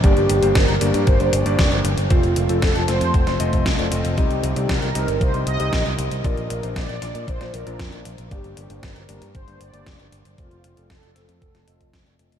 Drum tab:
HH |xxxxxxxxxxxxxxxx|xxxxxxxxxxxxxxxx|xxxxxxxxxxxxxxxx|xxxxxxxxxxxxxxxx|
SD |----o-------o---|----o-o--o--o---|----o-------o---|----o-o--o--o---|
BD |o---o---o---o---|o---o---o--oo---|o---o---o---o---|o---o---o---o---|

HH |xxxxxxxxxxxxxxxx|xxxxxxxxxxxxxxxx|
SD |----o-------o---|----o-o--o--o---|
BD |o---o---o---o---|o---o---o--oo---|